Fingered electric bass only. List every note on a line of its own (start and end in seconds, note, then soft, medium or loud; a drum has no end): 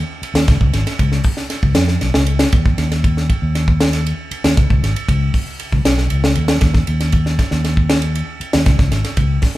0.22 muted fingered electric bass stroke soft
0.34 0.44 D#2 loud
0.48 0.58 C#2 medium
0.60 0.71 C#2 loud
0.73 0.83 G#1 loud
0.99 1.19 C#2 medium
1.63 1.73 C#2 medium
1.76 1.96 F2 medium
2.02 2.12 B1 loud
2.14 2.44 C#2 medium
2.53 2.73 D#2 medium
2.78 3.28 D#2 medium
3.42 4.12 D#2 medium
4.31 muted fingered electric bass stroke soft
4.44 4.54 D#2 medium
4.57 4.67 C#2 medium
4.70 4.80 C#2 medium
4.82 4.92 G#1 loud
5.09 5.28 C#2 medium
5.72 5.82 C#2 medium
5.85 6.08 B1 medium
6.11 6.34 C#2 medium
6.36 6.59 D#2 medium
6.61 6.82 D#2 medium
6.88 7.37 D#2 medium
7.51 8.21 D#2 medium
8.40 muted fingered electric bass stroke soft
8.54 8.64 D#2 medium
8.66 8.76 C#2 loud
8.79 8.89 C#2 loud
8.91 9.01 G#1 loud
9.17 9.37 C#2 medium